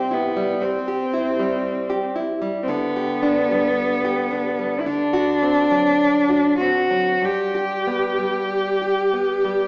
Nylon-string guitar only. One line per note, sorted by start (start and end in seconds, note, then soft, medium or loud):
0.00 0.58 C3 soft
0.00 0.17 G3 soft
0.00 0.26 G4 soft
0.11 0.52 E4 soft
0.37 0.77 G3 soft
0.62 1.03 C4 soft
0.88 1.28 G4 soft
1.14 1.54 E4 soft
1.39 2.22 G3 soft
1.90 2.31 G4 soft
2.16 2.58 E4 soft
2.42 2.69 G3 soft
2.68 4.81 D3 soft
2.96 3.40 G4 soft
3.23 3.67 D4 soft
3.51 4.37 G3 soft
4.05 4.48 G4 soft
4.31 4.74 D4 soft
4.59 4.86 G3 soft
4.86 7.18 D3 soft
5.13 5.59 F#4 soft
5.43 5.88 C4 soft
5.71 6.65 F#3 soft
6.29 6.77 F#4 soft
6.61 7.09 C4 soft
6.90 7.22 F#3 soft
7.22 9.68 G2 soft
7.55 8.06 G4 soft
7.87 8.38 B3 soft
8.19 9.20 G3 soft
8.82 9.32 G4 soft
9.13 9.64 B3 soft
9.45 9.68 G3 soft